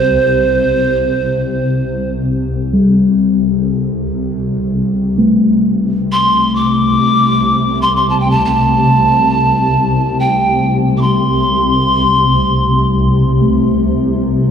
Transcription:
Already playing: synth drone C2 C3, singing bowl C4, pan flute C5
2.73 singing bowl G3
4.65 synth drone C2 C3
5.18 singing bowl A3
6.12 pan flute C6
6.55 pan flute D6
7.81 pan flute C6
7.96 pan flute C6
8.09 pan flute A5
8.20 pan flute G5
8.30 pan flute A5
8.45 pan flute A5
10.19 pan flute G5
10.97 pan flute C6 D6
13.42 singing bowl A3

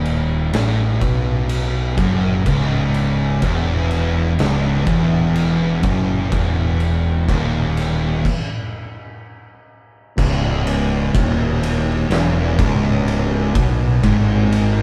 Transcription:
Already playing: fingered electric bass D#1, distorted electric guitar D#2
0.05 crash
0.53 fingered electric bass A1, distorted electric guitar A2, snare, crash
1.01 fingered electric bass B1, distorted electric guitar B2, kick, crash
1.49 crash
1.97 fingered electric bass F#1, distorted electric guitar F#2, kick, crash
2.45 fingered electric bass C#1, distorted electric guitar C#2, kick, crash
2.94 crash
3.42 fingered electric bass E1, distorted electric guitar E2, kick, crash
3.91 crash
4.39 fingered electric bass C#1, distorted electric guitar C#2, snare, crash
4.86 fingered electric bass E1, distorted electric guitar E2, kick, crash
5.35 crash
5.83 fingered electric bass F#1, distorted electric guitar F#2, kick, crash
6.32 fingered electric bass E1, distorted electric guitar E2, kick, crash
6.80 crash
7.28 fingered electric bass D#1, distorted electric guitar D#2, kick, crash
7.77 snare, crash
8.25 kick, crash
10.17 fingered electric bass C#1, distorted electric guitar C#2, kick, crash
10.67 ride
11.14 fingered electric bass D#1, distorted electric guitar D#2, kick, ride
11.63 ride
12.10 fingered electric bass E1, distorted electric guitar E2, snare, ride
12.59 fingered electric bass C#1, distorted electric guitar C#2, kick, ride
13.08 ride
13.55 fingered electric bass B1, distorted electric guitar B2, kick, ride
14.04 fingered electric bass G#1, distorted electric guitar G#2, kick, ride
14.52 ride

